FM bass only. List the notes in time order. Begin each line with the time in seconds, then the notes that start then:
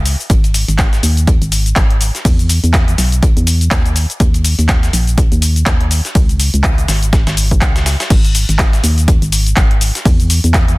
Already playing: C#2
0.30 G#1
0.68 G#1
1.03 D#2
1.42 G#1
1.76 G#1
2.25 E2
2.64 E2
2.98 B1
3.37 E2
3.71 D#2
4.20 D#2
4.59 D#2
4.93 A#1
5.32 D#2
5.66 D#2
6.15 C#2
6.54 C#2
6.88 G#1
7.27 G#1
7.62 C#2
8.10 G#1
8.49 G#1
8.84 D#2
9.22 G#1
9.57 G#1
10.05 E2
10.44 E2